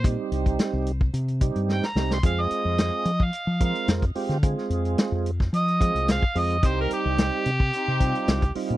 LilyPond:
<<
  \new Staff \with { instrumentName = "Harmonica" } { \time 4/4 \key c \minor \tempo 4 = 109 r2. g''16 bes''8 c'''16 | f''16 ees''4. f''8. f''8 r4 | r2 ees''4 f''8 ees''8 | c''16 bes'16 g'2. r8 | }
  \new Staff \with { instrumentName = "String section" } { \time 4/4 \key c \minor r1 | r1 | r1 | <c' ees' g'>4 r4 <c' ees' g'>4 r4 | }
  \new Staff \with { instrumentName = "Tonewheel organ" } { \time 4/4 \key c \minor <g c' ees' g'>4. r4 <g c' ees' g'>4 <g c' ees' g'>8 | <aes c' f' aes'>4. r4 <aes c' f' bes'>4 <aes c' f' g'>8 | <aes c' f' aes'>4. r4 <aes c' f' aes'>4 <aes c' f' aes'>8 | <g c' ees' g'>4. r4 <g c' ees' f'>4 <g c' ees' f'>8 | }
  \new Staff \with { instrumentName = "Fingered electric bass" } { \clef bass \time 4/4 \key c \minor bes,16 r16 c,8 r16 c,8. c8. g,8 r16 c,8 | f,8 r16 f,8 r16 f8 r16 f8 r16 f,8 r16 d16~ | d16 r16 f,8 r16 f,8. f8. c,8 r16 f,8 | c,8 r16 c,8 r16 c8 r16 c8 r16 c,8 r16 bes,16 | }
  \new DrumStaff \with { instrumentName = "Drums" } \drummode { \time 4/4 <hh bd>8 hh16 <hh bd>16 <hh sn>8 hh16 bd16 hh16 hh16 <hh bd>16 hh16 sn16 sn16 sn16 sn16 | <hh bd>8 hh8 <hh sn>8 hh16 bd16 hh8 <hh bd>16 hh16 <hh sn>16 <hh bd>16 hho16 <hh sn>16 | <hh bd>16 sn16 hh16 hh16 <hh sn>8 hh16 <bd sn>16 hh16 hh16 <hh bd>16 hh16 <hh sn>16 bd16 hho16 hh16 | <hh bd>8 hh8 <hh sn>8 hh16 bd16 hh8 <hh bd>16 hh16 <hh sn>16 <hh bd>16 hho16 hh16 | }
>>